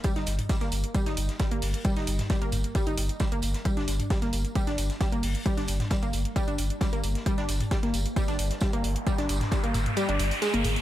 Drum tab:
HH |xxoxxxoxxxoxxxox|xxoxxxoxxxoxxxox|xxoxxxoxxxoxxxox|xxoxxxoxxxoxxxox|
TB |x-x-x-x-x-x-x---|x-x-x-x-x-x-x-x-|x-x-x-x-x-x-x---|x-x-x-x-x-x-x-x-|
SD |-oo-oo---o-oo---|-o-oo-------o--o|-oo-oo---o-oo---|-o-oo-------o--o|
T2 |---o------------|---o--o---------|---o------------|---o------------|
BD |o---o---o---o---|o---o---o---o---|o---o---o---o---|o---o---o---o---|

HH |xxoxxxoxxxoxxxox|xxoxxxoxxxooxxox|
TB |x-x-x-x-x-x-x---|x-x-x-x-x-x-x-x-|
SD |-oo-oo---o-oo---|-o-oo-------o--o|
T2 |---o------------|---o--oo------o-|
BD |o---o---o---o---|o---o-----------|